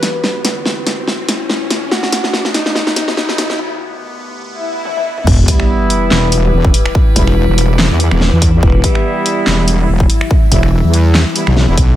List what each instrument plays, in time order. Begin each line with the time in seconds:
Already playing: ambient pad E2 E3 F#4 G4, clean electric guitar B4, riser
0.03 snare, closed hi-hat
0.24 ambient pad D2 D3 E4, snare
0.45 snare, closed hi-hat
0.66 snare
0.87 snare, closed hi-hat
1.08 snare
1.29 snare, closed hi-hat
1.50 snare
1.70 snare, closed hi-hat
1.91 ambient pad D#2 D#3 B3, clean electric guitar F#4, snare
2.03 snare
2.12 snare, closed hi-hat
2.24 snare
2.33 snare
2.45 snare
2.54 clean electric guitar D#4, snare, closed hi-hat
2.66 snare
2.75 snare
2.87 snare
2.96 snare, closed hi-hat
3.08 snare
3.17 clean electric guitar D#4, snare
3.29 snare
3.38 snare, closed hi-hat
3.50 snare
3.59 ambient pad B3
4.43 swell
4.85 high tom
4.97 high tom
5.18 mid tom
5.27 wobble bass E1, ambient pad E3 G3 E4 B4, kick, crash, sub drop
5.48 brass ensemble G3 B3 E4, kick, closed hi-hat
5.60 finger snap
5.90 closed hi-hat
6.11 wobble bass E1, snare, clap
6.32 closed hi-hat
6.44 brass ensemble G3 B3 E4
6.53 wobble bass E1
6.65 kick
6.74 closed hi-hat
6.86 finger snap
6.95 kick
7.16 wobble bass E1, brass ensemble G3 B3 E4, kick, closed hi-hat
7.27 finger snap
7.48 wobble bass E1
7.58 closed hi-hat
7.79 snare, clap
7.90 wobble bass E2
8.00 closed hi-hat
8.11 wobble bass E1, finger snap
8.21 snare
8.32 wobble bass E2
8.42 kick, closed hi-hat
8.63 wobble bass E1, ambient pad E5, kick
8.84 brass ensemble G3 B3 E4, kick, closed hi-hat
8.95 finger snap
9.26 closed hi-hat
9.47 wobble bass E1, snare, clap
9.68 closed hi-hat
9.79 brass ensemble G3 B3 E4
9.89 wobble bass E1
10.00 kick
10.10 closed hi-hat
10.21 finger snap
10.31 kick
10.52 wobble bass E1, brass ensemble G3 B3 E4, kick, closed hi-hat
10.63 finger snap
10.84 wobble bass E2
10.94 closed hi-hat
11.15 snare, clap
11.36 brass ensemble G3 B3 E4, closed hi-hat
11.47 wobble bass B1, finger snap
11.57 snare
11.68 wobble bass E1, brass ensemble G3 B3 E4
11.77 wobble bass B1, kick, closed hi-hat